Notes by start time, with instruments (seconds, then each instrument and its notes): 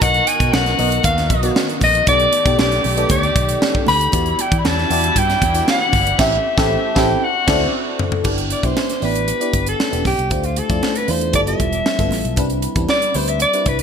Already playing: string section F#4 A#4
0.01 fingered electric bass B1, string section D#3 B3, fm electric piano B3 D#4 F#4 A#4 D#5, soprano saxophone F#5, kick, closed hi-hat, muted conga
0.14 closed hi-hat
0.27 soprano saxophone G#5, closed hi-hat
0.40 fingered electric bass B2, kick, closed hi-hat
0.53 fingered electric bass B1, soprano saxophone F#5, snare, high conga
0.66 snare, closed hi-hat
0.78 fingered electric bass B1, fm electric piano B3 D#4 F#4 A#4 D#5, open hi-hat, low conga
0.92 closed hi-hat
1.03 fingered electric bass D#2, soprano saxophone F5, kick, closed hi-hat, muted conga
1.18 snare, closed hi-hat
1.30 fingered electric bass B1, kick, closed hi-hat, muted conga, low conga
1.43 fm electric piano B3 D#4 F#4 A#4 D#5, closed hi-hat
1.56 snare, high conga
1.69 closed hi-hat
1.81 fingered electric bass A#1, soprano saxophone D#5, kick, snare, open hi-hat, high conga
1.95 closed hi-hat
2.07 fingered electric bass B1, string section A3 G4, fm electric piano B3 D#4 G4 A4 D5, soprano saxophone D5, kick, closed hi-hat, muted conga
2.19 closed hi-hat
2.33 closed hi-hat
2.45 fingered electric bass B2, fm electric piano B3 D#4 G4 A4 D5, kick, closed hi-hat
2.59 fingered electric bass B1, soprano saxophone D5, snare, high conga
2.72 snare, closed hi-hat
2.84 fingered electric bass B1, open hi-hat, low conga
2.97 fm electric piano B3 D#4 G4 A4 D5, closed hi-hat
3.09 fingered electric bass D2, soprano saxophone D5, kick, closed hi-hat, muted conga
3.23 closed hi-hat
3.36 fingered electric bass B1, kick, closed hi-hat, muted conga
3.49 closed hi-hat
3.62 snare, high conga
3.75 kick
3.86 fingered electric bass D2, soprano saxophone B5, snare, open hi-hat, high conga
4.01 closed hi-hat
4.12 fingered electric bass E2, string section E3 G3 D4 E4, fm electric piano B3 E4 F#4 G4 D5, kick, closed hi-hat, muted conga
4.26 closed hi-hat
4.39 soprano saxophone G5, closed hi-hat, muted conga
4.52 fingered electric bass E3, kick, closed hi-hat
4.59 soprano saxophone B5
4.65 fingered electric bass E2, soprano saxophone A5, snare, high conga
4.78 snare
4.90 fingered electric bass E2, fm electric piano B3 E4 F#4 G4 D5, open hi-hat, low conga
5.04 closed hi-hat
5.16 fingered electric bass G2, soprano saxophone G5, kick, closed hi-hat, muted conga
5.30 snare, closed hi-hat
5.42 fingered electric bass E2, kick, closed hi-hat, muted conga, low conga
5.54 fm electric piano B3 E4 F#4 G4 D5, closed hi-hat
5.68 soprano saxophone F#5, snare, high conga
5.92 fingered electric bass G1, kick, snare, open hi-hat, high conga
6.07 closed hi-hat
6.18 fingered electric bass A1, string section A3 C4 G4, fm electric piano C4 E4 G4 A4 E5, soprano saxophone E5, kick, snare, crash
6.57 fingered electric bass A1, fm electric piano C4 E4 G4 A4 E5, kick, snare
6.95 fingered electric bass A1, fm electric piano C4 E4 G4 A4 E5, soprano saxophone G5, kick, snare
7.22 string section C4 D4 F#4, soprano saxophone F#5
7.47 fingered electric bass D2, fm electric piano C4 E4 F#4 A4 D5, kick, snare, crash
7.99 floor tom
8.12 floor tom
8.24 fingered electric bass G1, fm electric piano B3 D4 E4 G4 D5, kick, crash, muted conga
8.38 closed hi-hat
8.50 soprano saxophone D5, closed hi-hat
8.63 fingered electric bass B1, fm electric piano B3 D4 E4 G4 D5, soprano saxophone C5, kick, closed hi-hat
8.77 snare, high conga
8.89 snare, closed hi-hat
9.01 fingered electric bass A1, fm electric piano B3 D4 E4 G4 D5, soprano saxophone B4, open hi-hat, low conga
9.15 closed hi-hat
9.28 closed hi-hat, muted conga
9.40 fm electric piano B3 D4 E4 G4 D5, closed hi-hat
9.53 fingered electric bass G1, kick, closed hi-hat, muted conga
9.67 soprano saxophone A4, closed hi-hat
9.80 snare, high conga
9.91 fingered electric bass E1, fm electric piano B3 D4 E4 G4 D5, closed hi-hat
10.05 fingered electric bass B1, soprano saxophone G4, kick, snare, open hi-hat, high conga
10.18 fingered electric bass C2, closed hi-hat
10.30 fingered electric bass D2, fm electric piano A3 D4 E4 F4 C5, kick, closed hi-hat, muted conga
10.44 soprano saxophone F4, closed hi-hat
10.56 soprano saxophone A4, closed hi-hat, muted conga
10.69 fingered electric bass F2, fm electric piano A3 D4 E4 F4 D5, kick, closed hi-hat
10.83 snare, high conga
10.95 soprano saxophone B4, closed hi-hat
11.07 fingered electric bass E2, fm electric piano A3 D4 E4 F4 C5, soprano saxophone C5, open hi-hat, low conga
11.21 closed hi-hat
11.33 fingered electric bass G1, fm electric piano G3 B3 E4 F4 A4, soprano saxophone D5, kick, closed hi-hat, muted conga
11.46 fm electric piano G3 B3 E4 F4 A4, soprano saxophone E5, closed hi-hat
11.60 fingered electric bass E1, kick, closed hi-hat, muted conga
11.73 closed hi-hat
11.86 snare, high conga
11.98 fingered electric bass G1, fm electric piano G3 B3 E4 F4 A4, kick, closed hi-hat
12.11 fingered electric bass A1, snare, open hi-hat, high conga
12.25 fingered electric bass B1, closed hi-hat
12.36 fingered electric bass C2, fm electric piano G3 C4 D4 E4 B4, kick, closed hi-hat, muted conga
12.50 closed hi-hat
12.62 closed hi-hat
12.75 fingered electric bass E2, fm electric piano G3 C4 D4 E4 B4, kick, closed hi-hat
12.89 soprano saxophone D5, snare, high conga
13.02 closed hi-hat
13.14 fingered electric bass D2, fm electric piano G3 C4 D4 E4 B4, soprano saxophone C5, open hi-hat, low conga
13.28 soprano saxophone E5, closed hi-hat
13.39 soprano saxophone D5, closed hi-hat, muted conga
13.53 fm electric piano G3 C4 D4 E4 B4, closed hi-hat
13.66 fingered electric bass C2, soprano saxophone B4, kick, closed hi-hat, muted conga
13.79 closed hi-hat